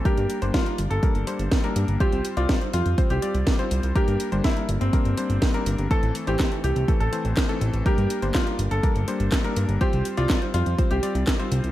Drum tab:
HH |xxxxxxxxxxxxxxxx|xxxxxxxxxxxxxxxx|xxxxxxxxxxxxxxxx|xxxxxxxxxxxxxxxx|
CP |----------------|----------------|----------------|----x-------x---|
SD |----o-------o---|----o-------o---|----o-------o---|----o-------o---|
BD |o---o---o---o---|o---o---o---o---|o---o---o---o---|o---o---o---o---|

HH |xxxxxxxxxxxxxxxx|xxxxxxxxxxxxxxxx|
CP |----x-------x---|----x-------x---|
SD |----o-------o---|----o-------o---|
BD |o---o---o---o---|o---o---o---o---|